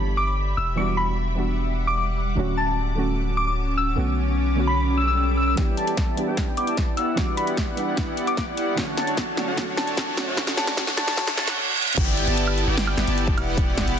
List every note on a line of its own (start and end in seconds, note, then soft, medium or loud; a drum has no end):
0.00 0.55 G1 medium
0.00 0.55 E3 medium
0.00 0.56 G3 medium
0.00 0.56 B3 medium
0.00 0.57 D4 medium
0.00 0.57 G4 medium
0.00 2.34 E5 medium
0.00 0.55 B5 medium
0.17 0.24 D6 medium
0.27 0.34 D6 medium
0.57 2.35 E1 medium
0.57 2.36 G3 medium
0.57 2.36 F#5 medium
0.57 2.36 D6 medium
0.57 0.68 E6 medium
0.76 1.34 E3 medium
0.76 1.35 G3 medium
0.76 1.35 B3 medium
0.76 1.36 D4 medium
0.76 1.36 F#4 loud
0.76 0.88 D6 medium
0.97 1.08 B5 medium
1.35 2.34 E3 medium
1.35 2.34 G3 medium
1.35 2.35 B3 medium
1.35 2.35 D4 medium
1.35 2.36 F#4 medium
1.87 1.94 D6 medium
1.98 2.04 D6 medium
2.35 3.95 D1 medium
2.35 2.94 D3 medium
2.35 2.95 F#3 medium
2.35 2.95 A3 medium
2.35 5.54 C#4 medium
2.35 2.96 C#4 medium
2.35 3.96 F#4 medium
2.35 3.96 A5 medium
2.35 3.96 D6 medium
2.39 2.96 F#4 loud
2.57 2.68 A5 medium
2.95 3.94 D3 medium
2.95 3.94 F#3 medium
2.95 3.95 A3 medium
2.95 3.95 C#4 medium
2.95 3.96 F#4 medium
3.37 3.44 D6 medium
3.47 3.54 D6 medium
3.78 3.88 E6 medium
3.95 5.55 B1 medium
3.95 4.54 D3 medium
3.95 4.54 A3 medium
3.95 4.55 B3 medium
3.95 4.55 C#4 medium
3.95 4.56 F#4 loud
3.95 5.56 A4 medium
3.95 5.56 B5 medium
3.95 5.56 D6 medium
4.55 5.54 D3 medium
4.55 5.55 A3 medium
4.55 5.55 B3 medium
4.55 5.56 C#4 medium
4.60 5.56 F#4 medium
4.67 4.78 B5 medium
4.77 swell medium
4.97 5.05 E6 medium
5.07 5.14 E6 medium
5.17 5.24 E6 medium
5.37 5.44 E6 medium
5.47 5.54 E6 medium
5.55 6.14 E3 loud
5.55 6.14 G3 medium
5.55 6.15 B3 medium
5.55 5.85 B3 medium
5.55 6.15 D4 medium
5.55 8.74 E4 medium
5.55 5.85 E4 medium
5.55 5.85 G4 medium
5.55 6.16 G4 loud
5.55 8.74 D5 medium
5.55 5.85 D5 medium
5.55 5.85 G5 medium
5.55 kick medium
5.55 snare soft
5.55 closed hi-hat medium
5.55 riser medium
5.77 5.88 A5 medium
5.77 closed hi-hat medium
5.87 6.25 B3 medium
5.87 6.25 E4 medium
5.87 6.25 G4 medium
5.87 6.25 D5 medium
5.87 6.25 A5 medium
5.87 closed hi-hat medium
5.97 kick medium
5.97 snare soft
5.97 closed hi-hat medium
6.15 6.95 E3 medium
6.15 6.96 G3 medium
6.15 6.96 B3 medium
6.15 6.97 D4 medium
6.15 closed hi-hat medium
6.19 6.97 G4 loud
6.27 6.55 B3 medium
6.27 6.55 E4 medium
6.27 6.55 G4 medium
6.27 6.55 D5 medium
6.27 6.55 G5 medium
6.37 kick medium
6.37 snare soft
6.37 closed hi-hat medium
6.57 6.66 B3 medium
6.57 6.66 E4 medium
6.57 6.66 G4 medium
6.57 6.66 D5 medium
6.57 6.66 G5 medium
6.57 6.64 D6 medium
6.57 closed hi-hat medium
6.67 6.87 B3 medium
6.67 6.87 E4 medium
6.67 6.87 G4 medium
6.67 6.87 D5 medium
6.67 6.87 A5 medium
6.67 6.74 D6 medium
6.67 closed hi-hat medium
6.77 kick medium
6.77 snare medium
6.77 closed hi-hat medium
6.97 8.76 G3 medium
6.97 7.45 B3 medium
6.97 7.45 E4 medium
6.97 7.45 G4 medium
6.97 7.45 D5 medium
6.97 7.45 F#5 medium
6.97 8.76 F#5 medium
6.97 7.08 E6 medium
6.97 closed hi-hat medium
7.15 7.74 E3 medium
7.15 7.74 G3 medium
7.15 7.75 B3 medium
7.15 7.75 D4 medium
7.15 7.76 F#4 loud
7.15 7.28 D6 medium
7.15 kick medium
7.15 snare medium
7.15 closed hi-hat medium
7.37 7.48 B5 medium
7.37 closed hi-hat medium
7.47 7.85 B3 medium
7.47 7.85 E4 medium
7.47 7.85 G4 medium
7.47 7.85 D5 medium
7.47 7.85 F#5 medium
7.47 closed hi-hat medium
7.57 kick medium
7.57 snare medium
7.57 closed hi-hat medium
7.75 8.74 E3 medium
7.75 8.75 G3 medium
7.75 8.75 B3 medium
7.75 8.75 D4 medium
7.75 8.76 F#5 medium
7.75 closed hi-hat medium
7.87 8.05 B3 medium
7.87 8.05 E4 medium
7.87 8.05 G4 medium
7.87 8.05 D5 medium
7.87 8.05 F#5 medium
7.97 kick medium
7.97 snare medium
7.97 closed hi-hat medium
8.07 8.55 B3 medium
8.07 8.55 E4 medium
8.07 8.55 G4 medium
8.07 8.55 D5 medium
8.07 8.55 F#5 loud
8.17 closed hi-hat medium
8.27 8.34 D6 medium
8.27 closed hi-hat medium
8.37 kick medium
8.37 snare medium
8.37 closed hi-hat medium
8.57 8.74 B3 medium
8.57 8.74 E4 medium
8.57 8.74 G4 medium
8.57 8.74 D5 medium
8.57 8.74 F#5 loud
8.57 closed hi-hat medium
8.75 9.34 D3 medium
8.75 10.36 D3 medium
8.75 9.34 F#3 medium
8.75 10.36 F#3 medium
8.75 9.35 A3 medium
8.75 9.05 A3 medium
8.75 9.35 C#4 medium
8.75 9.05 D4 medium
8.75 9.05 F#4 medium
8.75 11.55 A4 medium
8.75 11.55 C#5 medium
8.75 9.05 C#5 medium
8.75 9.05 F#5 medium
8.75 kick medium
8.75 snare medium
8.75 closed hi-hat medium
8.79 9.36 F#4 loud
8.97 9.08 A5 medium
8.97 snare medium
8.97 closed hi-hat medium
9.07 9.45 A3 medium
9.07 9.45 D4 medium
9.07 9.45 F#4 medium
9.07 9.45 C#5 medium
9.07 9.45 A5 medium
9.07 closed hi-hat medium
9.17 kick loud
9.17 snare medium
9.17 closed hi-hat medium
9.35 9.54 D3 medium
9.35 9.55 F#3 medium
9.35 9.56 A3 medium
9.35 9.56 C#4 medium
9.35 9.57 F#4 medium
9.35 snare medium
9.35 closed hi-hat medium
9.47 9.56 A3 medium
9.47 9.56 D4 medium
9.47 9.56 F#4 medium
9.47 9.56 C#5 medium
9.47 9.56 F#5 medium
9.55 10.14 D3 medium
9.55 10.14 F#3 medium
9.55 10.15 A3 medium
9.55 9.85 A3 medium
9.55 10.15 C#4 medium
9.55 9.85 D4 medium
9.55 9.85 F#4 medium
9.55 10.16 F#4 loud
9.55 9.85 C#5 medium
9.55 9.85 F#5 medium
9.55 kick medium
9.55 snare medium
9.55 closed hi-hat medium
9.77 9.88 A5 medium
9.77 snare medium
9.77 closed hi-hat medium
9.87 10.25 A3 medium
9.87 10.25 D4 medium
9.87 10.25 F#4 medium
9.87 10.25 C#5 medium
9.87 10.25 A5 medium
9.87 closed hi-hat medium
9.97 kick loud
9.97 snare medium
9.97 closed hi-hat medium
10.15 10.34 D3 medium
10.15 10.35 F#3 medium
10.15 10.36 A3 medium
10.15 10.36 C#4 medium
10.15 snare medium
10.15 closed hi-hat medium
10.19 10.37 F#4 loud
10.27 10.36 A3 medium
10.27 10.36 D4 medium
10.27 10.36 F#4 medium
10.27 10.36 C#5 medium
10.27 10.36 F#5 medium
10.35 10.74 D3 loud
10.35 10.75 F#3 medium
10.35 10.76 A3 medium
10.35 10.65 A3 medium
10.35 10.76 C#4 medium
10.35 10.65 D4 medium
10.35 10.65 F#4 medium
10.35 10.77 F#4 loud
10.35 10.65 C#5 medium
10.35 10.65 F#5 medium
10.35 kick medium
10.35 snare medium
10.35 closed hi-hat medium
10.47 snare medium
10.57 10.68 A5 medium
10.57 snare medium
10.57 closed hi-hat medium
10.67 10.76 A3 medium
10.67 10.76 D4 medium
10.67 10.76 F#4 medium
10.67 10.76 C#5 medium
10.67 10.76 A5 loud
10.67 snare medium
10.67 closed hi-hat medium
10.75 11.14 D3 loud
10.75 11.15 F#3 medium
10.75 11.16 A3 medium
10.75 11.05 A3 medium
10.75 11.16 C#4 medium
10.75 11.05 D4 medium
10.75 11.05 F#4 medium
10.75 11.05 C#5 medium
10.75 11.05 F#5 medium
10.75 kick loud
10.75 snare loud
10.75 closed hi-hat medium
10.79 11.17 F#4 loud
10.87 snare medium
10.97 11.08 A5 loud
10.97 snare medium
10.97 closed hi-hat medium
11.08 11.16 A3 medium
11.08 11.16 D4 medium
11.08 11.16 F#4 medium
11.08 11.16 C#5 medium
11.08 11.16 A5 medium
11.08 snare medium
11.15 11.34 D3 loud
11.15 11.35 F#3 medium
11.15 11.36 A3 medium
11.15 11.36 C#4 medium
11.15 11.36 D4 medium
11.15 11.36 F#4 medium
11.15 11.36 C#5 medium
11.15 11.36 F#5 medium
11.15 11.28 A5 medium
11.15 kick medium
11.15 snare loud
11.15 closed hi-hat medium
11.15 reverse cymbal medium
11.19 11.37 F#4 loud
11.27 snare medium
11.35 11.55 D3 loud
11.35 11.55 F#3 medium
11.35 11.56 A3 loud
11.35 11.56 A3 medium
11.35 11.56 C#4 loud
11.35 11.56 D4 medium
11.35 11.56 F#4 medium
11.35 11.57 F#4 loud
11.35 11.56 C#5 medium
11.35 11.56 F#5 loud
11.35 11.48 A5 medium
11.35 snare loud
11.35 closed hi-hat medium
11.47 snare medium
11.47 closed hi-hat medium
11.77 closed hi-hat medium
11.82 closed hi-hat medium
11.88 closed hi-hat medium
11.93 closed hi-hat medium
11.97 12.25 G1 loud
11.97 12.25 B3 medium
11.97 12.25 E4 medium
11.97 12.25 G4 medium
11.97 12.25 D5 medium
11.97 12.25 G5 medium
11.97 kick loud
11.97 closed hi-hat medium
11.97 crash loud
11.97 downlifter medium
12.17 closed hi-hat medium
12.27 12.65 G1 loud
12.27 12.65 B3 medium
12.27 12.65 E4 medium
12.27 12.65 G4 medium
12.27 12.65 D5 medium
12.27 12.65 A5 loud
12.27 closed hi-hat medium
12.37 closed hi-hat medium
12.48 high woodblock medium
12.58 closed hi-hat medium
12.67 12.95 G1 loud
12.67 12.95 B3 medium
12.67 12.95 E4 medium
12.67 12.95 G4 medium
12.67 12.95 D5 medium
12.67 12.95 G5 medium
12.77 snare loud
12.77 closed hi-hat medium
12.87 high woodblock medium
12.97 13.06 G1 loud
12.97 13.06 B3 medium
12.97 13.06 E4 medium
12.97 13.06 G4 medium
12.97 13.06 D5 medium
12.97 13.06 G5 loud
12.97 snare medium
12.97 closed hi-hat medium
13.07 13.36 G1 loud
13.07 13.27 B3 medium
13.07 13.27 E4 medium
13.07 13.27 G4 medium
13.07 13.27 D5 medium
13.07 13.27 A5 medium
13.07 closed hi-hat medium
13.18 closed hi-hat medium
13.27 kick loud
13.38 13.85 E1 loud
13.38 13.85 B3 medium
13.38 13.85 E4 medium
13.38 13.85 G4 medium
13.38 13.85 D5 medium
13.38 13.85 F#5 loud
13.38 closed hi-hat medium
13.38 high woodblock medium
13.57 kick loud
13.57 closed hi-hat medium
13.77 kick medium
13.77 snare medium
13.77 closed hi-hat medium
13.87 14.00 E1 loud
13.87 14.00 B3 medium
13.87 14.00 E4 medium
13.87 14.00 G4 medium
13.87 14.00 D5 medium
13.87 14.00 F#5 medium
13.87 closed hi-hat medium